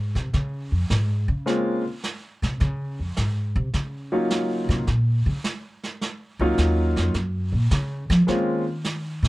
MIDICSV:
0, 0, Header, 1, 4, 480
1, 0, Start_track
1, 0, Key_signature, -5, "minor"
1, 0, Tempo, 568182
1, 1238, Time_signature, 4, 2, 24, 8
1, 7841, End_track
2, 0, Start_track
2, 0, Title_t, "Grand piano"
2, 0, Program_c, 0, 0
2, 1232, Note_on_c, 0, 58, 47
2, 1235, Note_on_c, 0, 56, 50
2, 1236, Note_on_c, 0, 60, 41
2, 1238, Note_on_c, 0, 61, 41
2, 1243, Note_on_c, 0, 65, 54
2, 1532, Note_off_c, 0, 58, 0
2, 1534, Note_off_c, 0, 56, 0
2, 1534, Note_off_c, 0, 60, 0
2, 1536, Note_off_c, 0, 61, 0
2, 1538, Note_off_c, 0, 65, 0
2, 3479, Note_on_c, 0, 54, 51
2, 3480, Note_on_c, 0, 58, 46
2, 3482, Note_on_c, 0, 61, 49
2, 3487, Note_on_c, 0, 63, 46
2, 3491, Note_on_c, 0, 65, 57
2, 4084, Note_off_c, 0, 54, 0
2, 4084, Note_off_c, 0, 58, 0
2, 4085, Note_off_c, 0, 61, 0
2, 4087, Note_off_c, 0, 63, 0
2, 4090, Note_off_c, 0, 65, 0
2, 5411, Note_on_c, 0, 58, 57
2, 5412, Note_on_c, 0, 54, 67
2, 5415, Note_on_c, 0, 61, 56
2, 5417, Note_on_c, 0, 63, 61
2, 5421, Note_on_c, 0, 65, 71
2, 6009, Note_off_c, 0, 58, 0
2, 6010, Note_off_c, 0, 54, 0
2, 6011, Note_off_c, 0, 61, 0
2, 6012, Note_off_c, 0, 63, 0
2, 6014, Note_off_c, 0, 65, 0
2, 6986, Note_on_c, 0, 56, 53
2, 6995, Note_on_c, 0, 58, 44
2, 6997, Note_on_c, 0, 60, 46
2, 6999, Note_on_c, 0, 65, 59
2, 7000, Note_on_c, 0, 61, 46
2, 7289, Note_off_c, 0, 56, 0
2, 7293, Note_off_c, 0, 58, 0
2, 7294, Note_off_c, 0, 60, 0
2, 7296, Note_off_c, 0, 61, 0
2, 7296, Note_off_c, 0, 65, 0
2, 7841, End_track
3, 0, Start_track
3, 0, Title_t, "Upright bass"
3, 0, Program_c, 1, 32
3, 0, Note_on_c, 1, 44, 75
3, 120, Note_off_c, 1, 44, 0
3, 128, Note_on_c, 1, 48, 84
3, 273, Note_off_c, 1, 48, 0
3, 285, Note_on_c, 1, 49, 94
3, 602, Note_off_c, 1, 49, 0
3, 605, Note_on_c, 1, 41, 60
3, 752, Note_off_c, 1, 41, 0
3, 761, Note_on_c, 1, 44, 85
3, 1077, Note_off_c, 1, 44, 0
3, 1083, Note_on_c, 1, 49, 84
3, 1532, Note_off_c, 1, 49, 0
3, 2047, Note_on_c, 1, 48, 83
3, 2193, Note_off_c, 1, 48, 0
3, 2204, Note_on_c, 1, 49, 99
3, 2521, Note_off_c, 1, 49, 0
3, 2530, Note_on_c, 1, 41, 43
3, 2675, Note_off_c, 1, 41, 0
3, 2682, Note_on_c, 1, 44, 72
3, 2999, Note_off_c, 1, 44, 0
3, 3004, Note_on_c, 1, 48, 100
3, 3151, Note_off_c, 1, 48, 0
3, 3157, Note_on_c, 1, 49, 84
3, 3934, Note_off_c, 1, 49, 0
3, 3960, Note_on_c, 1, 48, 93
3, 4109, Note_off_c, 1, 48, 0
3, 4119, Note_on_c, 1, 46, 76
3, 4439, Note_off_c, 1, 46, 0
3, 4444, Note_on_c, 1, 49, 83
3, 4535, Note_off_c, 1, 49, 0
3, 5402, Note_on_c, 1, 37, 84
3, 5550, Note_off_c, 1, 37, 0
3, 5558, Note_on_c, 1, 39, 72
3, 5878, Note_off_c, 1, 39, 0
3, 5882, Note_on_c, 1, 41, 80
3, 6028, Note_off_c, 1, 41, 0
3, 6033, Note_on_c, 1, 42, 76
3, 6351, Note_off_c, 1, 42, 0
3, 6356, Note_on_c, 1, 46, 68
3, 6507, Note_off_c, 1, 46, 0
3, 6515, Note_on_c, 1, 49, 94
3, 6836, Note_off_c, 1, 49, 0
3, 6841, Note_on_c, 1, 53, 109
3, 6990, Note_off_c, 1, 53, 0
3, 6996, Note_on_c, 1, 51, 72
3, 7773, Note_off_c, 1, 51, 0
3, 7794, Note_on_c, 1, 46, 87
3, 7841, Note_off_c, 1, 46, 0
3, 7841, End_track
4, 0, Start_track
4, 0, Title_t, "Drums"
4, 132, Note_on_c, 9, 38, 38
4, 216, Note_off_c, 9, 38, 0
4, 283, Note_on_c, 9, 25, 50
4, 283, Note_on_c, 9, 38, 40
4, 367, Note_off_c, 9, 38, 0
4, 762, Note_on_c, 9, 38, 67
4, 846, Note_off_c, 9, 38, 0
4, 1243, Note_off_c, 9, 25, 0
4, 1243, Note_on_c, 9, 25, 42
4, 1243, Note_on_c, 9, 38, 42
4, 1327, Note_off_c, 9, 38, 0
4, 1720, Note_on_c, 9, 38, 60
4, 1804, Note_off_c, 9, 38, 0
4, 2052, Note_on_c, 9, 38, 40
4, 2137, Note_off_c, 9, 38, 0
4, 2197, Note_off_c, 9, 25, 0
4, 2197, Note_on_c, 9, 25, 46
4, 2197, Note_on_c, 9, 38, 42
4, 2282, Note_off_c, 9, 38, 0
4, 2676, Note_on_c, 9, 38, 61
4, 2760, Note_off_c, 9, 38, 0
4, 3156, Note_off_c, 9, 25, 0
4, 3156, Note_on_c, 9, 25, 45
4, 3156, Note_on_c, 9, 38, 43
4, 3240, Note_off_c, 9, 38, 0
4, 3637, Note_on_c, 9, 38, 69
4, 3721, Note_off_c, 9, 38, 0
4, 3969, Note_on_c, 9, 38, 37
4, 4054, Note_off_c, 9, 38, 0
4, 4116, Note_off_c, 9, 25, 0
4, 4116, Note_on_c, 9, 25, 50
4, 4116, Note_on_c, 9, 38, 44
4, 4200, Note_off_c, 9, 38, 0
4, 4597, Note_on_c, 9, 38, 66
4, 4682, Note_off_c, 9, 38, 0
4, 4929, Note_on_c, 9, 38, 38
4, 5013, Note_off_c, 9, 38, 0
4, 5081, Note_off_c, 9, 25, 0
4, 5081, Note_on_c, 9, 25, 48
4, 5081, Note_on_c, 9, 38, 46
4, 5165, Note_off_c, 9, 38, 0
4, 5557, Note_on_c, 9, 38, 65
4, 5641, Note_off_c, 9, 38, 0
4, 5886, Note_on_c, 9, 38, 42
4, 5970, Note_off_c, 9, 38, 0
4, 6035, Note_off_c, 9, 25, 0
4, 6035, Note_on_c, 9, 25, 49
4, 6035, Note_on_c, 9, 38, 44
4, 6119, Note_off_c, 9, 38, 0
4, 6514, Note_on_c, 9, 38, 66
4, 6599, Note_off_c, 9, 38, 0
4, 6845, Note_on_c, 9, 38, 41
4, 6930, Note_off_c, 9, 38, 0
4, 6993, Note_off_c, 9, 25, 0
4, 6993, Note_on_c, 9, 25, 49
4, 6993, Note_on_c, 9, 38, 42
4, 7077, Note_off_c, 9, 38, 0
4, 7472, Note_on_c, 9, 38, 62
4, 7557, Note_off_c, 9, 38, 0
4, 7805, Note_on_c, 9, 38, 42
4, 7841, Note_off_c, 9, 25, 0
4, 7841, Note_off_c, 9, 38, 0
4, 7841, End_track
0, 0, End_of_file